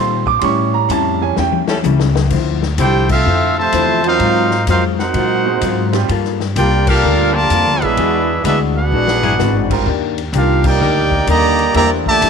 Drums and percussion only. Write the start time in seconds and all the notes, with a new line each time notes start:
0.26 kick
0.41 kick, ride
0.89 kick, hi-hat pedal, ride
1.36 snare
1.52 high tom
1.68 snare
1.84 hi-hat pedal, high tom
2.00 snare
2.15 snare
2.30 kick, crash
2.63 snare
2.78 kick, hi-hat pedal, ride
3.09 kick, crash
3.72 kick, hi-hat pedal, ride
4.04 ride
4.19 kick, ride
4.51 snare
4.67 kick, hi-hat pedal, ride
4.99 snare
5.14 kick, ride
5.61 kick, hi-hat pedal, ride
5.93 snare, ride
6.09 kick, ride
6.25 snare
6.40 snare
6.56 kick, hi-hat pedal, ride
6.87 kick, crash
7.50 kick, hi-hat pedal, ride
7.82 ride
7.97 kick, ride
8.44 kick, hi-hat pedal, ride
9.07 snare
9.23 floor tom
9.39 snare, hi-hat pedal
9.70 kick, crash
9.86 kick
10.18 ride
10.33 kick, hi-hat pedal, ride
10.64 kick, crash
11.12 kick
11.27 kick, hi-hat pedal, ride
11.59 ride
11.74 kick, ride
12.06 kick
12.22 kick, hi-hat pedal, ride